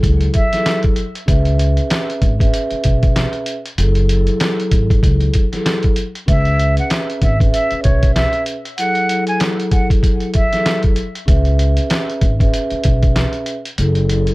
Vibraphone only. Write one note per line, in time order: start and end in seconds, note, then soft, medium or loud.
0.00 0.40 F#3 loud
0.00 0.40 E4 medium
0.00 0.41 G#4 medium
0.00 0.41 A4 loud
0.52 0.94 F#3 medium
0.52 0.94 E4 medium
0.52 0.94 G#4 medium
0.52 0.95 A4 loud
1.26 2.29 C#4 loud
1.26 2.29 G#4 medium
1.26 2.30 B4 medium
1.26 2.30 E5 loud
2.39 3.53 C#4 medium
2.39 3.53 G#4 medium
2.39 3.54 B4 medium
2.39 3.54 E5 loud
3.78 4.07 F#3 medium
3.78 4.08 E4 medium
3.78 4.08 G#4 medium
3.78 4.08 A4 loud
4.10 5.40 F#3 loud
4.10 5.40 E4 medium
4.10 5.41 G#4 medium
4.10 5.41 A4 loud
5.52 5.93 F#3 medium
5.52 5.94 E4 medium
5.52 5.94 G#4 medium
5.52 5.95 A4 loud
6.26 7.29 C#4 loud
6.26 7.29 G#4 medium
6.26 7.30 B4 medium
6.26 7.30 E5 loud
7.39 8.53 C#4 medium
7.39 8.53 G#4 medium
7.39 8.53 B4 medium
7.39 8.54 E5 loud
8.78 9.07 F#3 medium
8.78 9.08 E4 medium
8.78 9.08 G#4 medium
8.78 9.08 A4 loud
9.10 10.40 F#3 medium
9.10 10.40 E4 medium
9.10 10.41 G#4 medium
9.10 10.41 A4 loud
10.52 10.93 F#3 medium
10.52 10.94 E4 medium
10.52 10.94 G#4 medium
10.52 10.95 A4 loud
11.26 12.29 C#4 loud
11.26 12.29 G#4 medium
11.26 12.30 B4 medium
11.26 12.30 E5 loud
12.39 13.53 C#4 loud
12.39 13.53 G#4 medium
12.39 13.54 B4 medium
12.39 13.54 E5 loud
13.78 14.07 F#3 medium
13.78 14.08 E4 medium
13.78 14.08 G#4 medium
13.78 14.08 A4 loud
14.10 14.34 F#3 loud
14.10 14.34 E4 medium
14.10 14.34 G#4 medium
14.10 14.34 A4 loud